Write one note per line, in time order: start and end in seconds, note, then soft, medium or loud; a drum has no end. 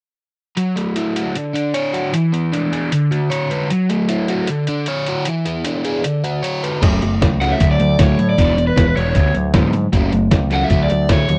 0.57 1.35 F#3 medium
0.57 closed hi-hat medium
0.76 1.35 A3 medium
0.76 closed hi-hat medium
0.96 1.35 E4 medium
0.96 closed hi-hat medium
1.16 1.36 F#4 medium
1.16 closed hi-hat medium
1.35 2.14 D3 medium
1.35 closed hi-hat medium
1.54 2.13 D4 medium
1.54 closed hi-hat soft
1.74 2.14 C#5 medium
1.74 closed hi-hat medium
1.93 2.13 F#4 medium
1.93 closed hi-hat soft
2.13 2.91 E3 medium
2.13 closed hi-hat medium
2.32 2.92 B3 medium
2.32 closed hi-hat medium
2.53 2.92 D4 medium
2.53 closed hi-hat medium
2.72 2.92 G#4 medium
2.72 closed hi-hat soft
2.92 3.70 D3 medium
2.92 closed hi-hat medium
3.11 3.70 F#4 medium
3.11 closed hi-hat soft
3.30 3.70 C#5 medium
3.30 closed hi-hat medium
3.51 3.70 B4 medium
3.51 closed hi-hat soft
3.70 4.48 F#3 medium
3.70 closed hi-hat medium
3.89 4.48 A3 medium
3.89 closed hi-hat medium
4.09 4.48 E4 medium
4.09 closed hi-hat medium
4.28 4.49 F#4 medium
4.28 closed hi-hat medium
4.47 5.27 D3 medium
4.47 closed hi-hat medium
4.67 5.27 D4 medium
4.67 closed hi-hat medium
4.86 5.27 C#5 medium
4.86 closed hi-hat medium
5.06 5.27 F#4 medium
5.06 closed hi-hat medium
5.25 6.04 E3 medium
5.25 closed hi-hat medium
5.46 6.04 B3 medium
5.46 closed hi-hat medium
5.65 6.04 D4 medium
5.65 closed hi-hat medium
5.85 6.04 G#4 medium
5.85 closed hi-hat medium
6.04 6.82 D3 medium
6.04 closed hi-hat medium
6.24 6.82 F#4 medium
6.24 closed hi-hat medium
6.43 6.82 C#5 medium
6.43 closed hi-hat medium
6.63 6.82 B4 medium
6.63 closed hi-hat soft
6.82 6.98 F#1 medium
6.82 7.00 F#3 medium
6.82 7.00 A3 medium
6.82 7.01 C#4 medium
6.82 kick medium
6.82 closed hi-hat medium
6.82 crash medium
7.02 7.18 F#1 medium
7.02 7.20 F#3 medium
7.02 7.20 A3 medium
7.02 closed hi-hat medium
7.22 7.53 C#2 medium
7.22 7.39 F#3 medium
7.22 7.39 A3 medium
7.22 kick medium
7.22 snare medium
7.22 closed hi-hat medium
7.41 7.59 F#3 medium
7.41 7.60 A3 medium
7.41 7.60 C#4 medium
7.41 7.51 F#5 medium
7.41 closed hi-hat medium
7.51 7.71 E5 medium
7.51 snare soft
7.60 7.76 D2 medium
7.60 7.78 D3 medium
7.60 7.79 F#3 medium
7.60 7.79 A3 medium
7.60 kick loud
7.60 closed hi-hat medium
7.71 8.00 D5 medium
7.80 7.96 D2 medium
7.80 7.97 D3 medium
7.80 7.98 F#3 medium
7.80 closed hi-hat medium
7.99 8.15 D2 medium
7.99 8.17 D3 medium
7.99 8.18 F#3 medium
7.99 8.18 A3 medium
7.99 8.29 C#5 medium
7.99 kick medium
7.99 snare medium
7.99 closed hi-hat medium
8.18 8.35 A2 medium
8.18 8.36 D3 medium
8.18 8.36 F#3 medium
8.18 closed hi-hat medium
8.29 8.65 D5 medium
8.38 8.70 E1 medium
8.38 8.56 E3 medium
8.38 8.57 B3 medium
8.38 8.57 D4 medium
8.38 kick medium
8.38 closed hi-hat medium
8.57 8.75 E3 medium
8.57 8.75 B3 medium
8.57 closed hi-hat medium
8.67 8.85 B4 medium
8.76 8.93 E1 medium
8.76 8.94 E3 medium
8.76 8.94 B3 medium
8.76 kick medium
8.76 snare medium
8.76 closed hi-hat medium
8.87 8.96 B4 medium
8.95 9.12 E1 medium
8.95 9.14 E3 medium
8.95 9.15 B3 medium
8.95 9.15 D4 medium
8.95 9.32 C#5 medium
8.95 closed hi-hat medium
9.07 snare soft
9.15 9.31 D2 medium
9.15 9.33 D3 medium
9.15 9.33 F#3 medium
9.15 9.34 B3 medium
9.15 kick medium
9.15 closed hi-hat medium
9.34 9.52 D2 medium
9.34 9.52 D3 medium
9.34 9.52 F#3 medium
9.34 closed hi-hat soft
9.54 9.86 G#2 medium
9.54 9.73 D3 medium
9.54 9.73 F#3 medium
9.54 9.73 B3 medium
9.54 kick loud
9.54 snare loud
9.54 closed hi-hat medium
9.73 9.91 D3 medium
9.73 9.91 F#3 medium
9.73 closed hi-hat soft
9.92 10.09 F#1 medium
9.92 10.11 F#3 medium
9.92 10.11 A3 medium
9.92 10.12 C#4 medium
9.92 kick medium
9.92 closed hi-hat medium
10.12 10.29 F#1 medium
10.12 10.30 F#3 medium
10.12 10.30 A3 medium
10.12 closed hi-hat medium
10.31 10.64 C#2 medium
10.31 10.49 F#3 medium
10.31 10.49 A3 medium
10.31 kick medium
10.31 snare medium
10.31 closed hi-hat medium
10.50 10.69 F#3 medium
10.50 10.70 A3 medium
10.50 10.70 C#4 medium
10.50 10.64 F#5 medium
10.50 closed hi-hat medium
10.60 10.83 E5 medium
10.60 snare soft
10.70 10.87 D2 medium
10.70 10.89 D3 medium
10.70 10.89 F#3 medium
10.70 10.90 A3 medium
10.70 kick loud
10.70 closed hi-hat medium
10.83 11.11 D5 medium
10.90 11.07 D2 medium
10.90 11.07 D3 medium
10.90 11.07 F#3 medium
10.90 closed hi-hat medium
11.09 11.25 D2 medium
11.09 11.28 D3 medium
11.09 11.28 F#3 medium
11.09 11.28 A3 medium
11.09 11.38 C#5 medium
11.09 kick medium
11.09 snare loud
11.09 closed hi-hat medium
11.29 11.39 D#2 medium
11.29 11.39 D3 medium
11.29 11.39 F#3 medium
11.29 closed hi-hat medium